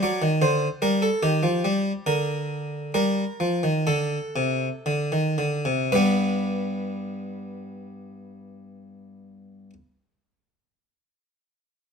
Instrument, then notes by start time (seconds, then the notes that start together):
harpsichord
0.03 F#3 D5
0.22 D#3
0.42 D3 C5
0.82 G3 A#4
1.02 A4
1.23 D#3 G4
1.43 F3
1.65 G3
2.06 D3 A#4
2.94 G3 A#4
3.40 F3
3.63 D#3
3.87 D3 A4
4.36 C3
4.86 D3
5.12 D#3
5.38 D3
5.65 C3
5.92 G2 G3 B3 B4